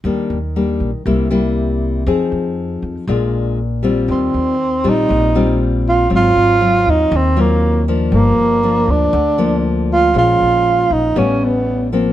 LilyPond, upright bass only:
\new Staff \with { instrumentName = "Upright bass" } { \clef bass \time 4/4 \key ees \major \tempo 4 = 119 ees,16 r16 ees,4 bes,,16 r16 c,2 | f,16 r16 f,4 f,16 r16 bes,,2 | ees,8 ees,4 bes,,8 bes,,2 | aes,,8 aes,,4 ees,8 ees,2 |
g,,8 g,,4 d,8 d,2 | bes,,8 bes,,4 bes,,8 a,,2 | }